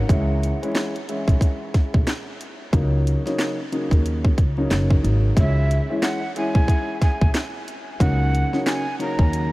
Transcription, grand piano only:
0.09 0.57 E3 medium
0.09 0.57 G#3 medium
0.09 0.57 C#4 medium
0.09 0.57 E4 loud
0.62 0.92 E3 medium
0.62 0.92 G#3 medium
0.62 0.92 C#4 medium
0.62 0.92 E4 loud
1.08 2.63 E3 medium
1.08 2.63 G#3 medium
1.08 2.63 C#4 medium
1.08 2.63 E4 loud
2.72 3.21 C#3 medium
2.72 3.21 F#3 medium
2.72 3.21 A#3 medium
2.72 3.21 C#4 medium
2.72 3.21 D#4 medium
3.26 3.56 C#3 loud
3.26 3.56 F#3 medium
3.26 3.56 A#3 medium
3.26 3.56 C#4 medium
3.26 3.56 D#4 loud
3.72 4.34 C#3 medium
3.72 4.34 F#3 medium
3.72 4.34 A#3 medium
3.72 4.34 C#4 medium
3.72 4.34 D#4 loud
4.57 5.00 C#3 medium
4.57 5.00 F#3 medium
4.57 5.00 A#3 medium
4.57 5.01 C#4 medium
4.57 5.01 D#4 loud
5.02 5.34 C#3 medium
5.02 5.34 F#3 medium
5.02 5.34 A#3 medium
5.02 5.34 C#4 medium
5.02 5.34 D#4 medium
5.36 5.84 E3 medium
5.36 5.85 G#3 medium
5.36 5.85 C#4 medium
5.36 5.85 E4 loud
5.90 6.19 E3 loud
5.90 6.19 G#3 medium
5.90 6.19 C#4 medium
5.90 6.20 E4 loud
6.36 7.90 E3 medium
6.36 7.90 G#3 medium
6.36 7.90 C#4 medium
6.36 7.90 E4 loud
8.00 8.48 C#3 medium
8.00 8.48 F#3 medium
8.00 8.48 A#3 medium
8.00 8.48 C#4 medium
8.00 8.48 D#4 loud
8.53 8.83 C#3 loud
8.53 8.83 F#3 medium
8.53 8.83 A#3 medium
8.53 8.83 C#4 medium
8.53 8.83 D#4 loud
8.99 9.52 C#3 medium
8.99 9.52 F#3 medium
8.99 9.52 A#3 medium
8.99 9.52 C#4 medium
8.99 9.52 D#4 loud

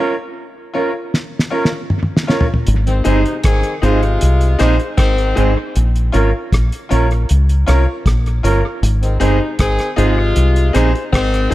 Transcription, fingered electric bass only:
2.68 3.01 G#1 loud
3.06 3.23 G1 medium
3.45 3.62 G#1 medium
3.83 4.16 G#1 medium
4.22 4.55 C2 medium
4.60 4.77 A#1 medium
4.99 5.32 G#1 medium
5.38 5.54 G#1 medium
5.76 6.09 A#1 loud
6.15 6.31 G#1 loud
6.53 6.70 A#1 medium
6.92 7.25 A#1 loud
7.31 7.64 C#2 medium
7.68 7.85 C2 medium
8.06 8.40 A#1 loud
8.44 8.61 G1 loud
8.83 9.16 G#1 loud
9.21 9.38 G1 medium
9.60 9.77 G#1 medium
9.98 10.32 G#1 medium
10.36 10.70 C2 medium
10.75 10.92 A#1 medium
11.13 11.47 G#1 medium

